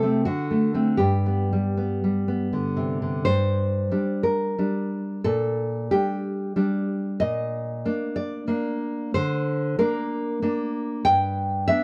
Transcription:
nylon-string guitar
Already playing: C3 A4
0.03 A3 C4
0.25 D3 F#4
0.51 A3
0.74 A3 C4
0.97 G2 G4
1.26 B3
1.53 G3
1.77 B3
2.04 G3
2.28 B3
2.53 D3
2.77 C3
3.02 D3
3.25 G2 C5
3.91 G3 D4
4.23 A#4
4.58 G3 D4
5.24 A#2 A4
5.91 G3 D4 G4
6.56 G3 D4
7.20 A#2 D#5
7.85 A#3 D4
8.16 D5
8.48 A#3 D4
9.14 D3 C5
9.79 A#3 D4 A#4
10.42 A#3 D4
11.05 G2 G5
11.68 B3 D4 E5

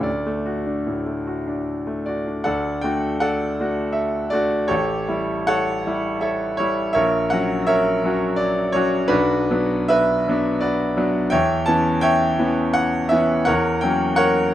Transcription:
grand piano
0.01 D2 D5
0.26 A3
0.46 F#4
0.67 D4
0.87 A2
1.06 A3
1.27 F#4
1.47 D4
1.87 A3
2.06 F#4 D5
2.28 D4
2.44 D2 A4 D5 F#5
2.81 A3 D4 F#4 G5
3.20 A4 D5 F#5
3.60 A3 D4 F#4
3.92 E5
4.30 A3 D4 F#4 D5
4.68 A1 G4 A4 C#5
5.08 G3 E4
5.47 A4 C#5 F#5
5.87 G3 E4
6.21 A4 C#5 E5
6.57 G3 E4 C#5
6.93 A#1 A#4 C#5 E5
7.30 F#3 C#4 F#4 F#5
7.67 A#4 C#5 E5
8.04 F#3 C#4 F#4
8.36 D5
8.72 F#3 C#4 F#4 C#5
9.08 B1 D4 F#4 B4
9.51 F#3 B3 D4
9.88 B4 E5
10.28 F#3 B3 D4
10.61 F#4 B4 D5
10.97 F#3 B3 D4
11.30 E2 C#5 E5 G5
11.66 E3 B3 C#4 A5
12.01 C#5 E5 G5
12.39 E3 B3 C#4
12.74 F#5
13.09 E3 B3 C#4 E5
13.45 E2 A#4 C#5 F#5
13.81 F#3 A#3 C#4 G5
14.16 A#4 C#5 F#5

